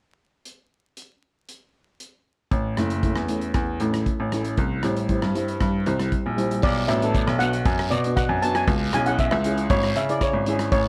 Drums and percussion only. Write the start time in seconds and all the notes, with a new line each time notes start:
0.45 closed hi-hat
0.97 closed hi-hat
1.49 closed hi-hat
2.00 closed hi-hat
2.51 kick, closed hi-hat
2.77 cross-stick, closed hi-hat
2.90 closed hi-hat
3.03 kick, closed hi-hat
3.16 cross-stick
3.28 closed hi-hat
3.41 closed hi-hat
3.54 kick, cross-stick, closed hi-hat
3.80 closed hi-hat
3.94 cross-stick, closed hi-hat
4.06 kick, closed hi-hat
4.32 cross-stick, closed hi-hat
4.45 closed hi-hat
4.57 kick, closed hi-hat
4.83 cross-stick, closed hi-hat
4.96 closed hi-hat
5.09 kick, closed hi-hat
5.22 cross-stick
5.35 closed hi-hat
5.48 closed hi-hat
5.60 kick, cross-stick, closed hi-hat
5.86 closed hi-hat
5.99 cross-stick, closed hi-hat
6.12 kick, closed hi-hat
6.38 closed hi-hat
6.51 closed hi-hat
6.62 kick, crash, long guiro
6.89 cross-stick, closed hi-hat
7.02 closed hi-hat
7.15 kick, closed hi-hat, short guiro
7.28 cross-stick
7.40 closed hi-hat, short guiro
7.53 closed hi-hat
7.65 kick, closed hi-hat, long guiro
7.79 cross-stick
7.91 closed hi-hat, short guiro
8.04 closed hi-hat
8.17 kick, cross-stick, closed hi-hat, short guiro
8.43 closed hi-hat
8.55 cross-stick, closed hi-hat
8.68 kick, closed hi-hat, long guiro
8.93 cross-stick, closed hi-hat
9.06 closed hi-hat
9.19 kick, closed hi-hat, short guiro
9.31 cross-stick
9.44 closed hi-hat
9.57 closed hi-hat
9.70 kick, closed hi-hat, long guiro
9.83 cross-stick
9.96 closed hi-hat, short guiro
10.09 closed hi-hat
10.21 kick, cross-stick, closed hi-hat, short guiro
10.46 closed hi-hat
10.59 cross-stick, closed hi-hat
10.72 kick, closed hi-hat, long guiro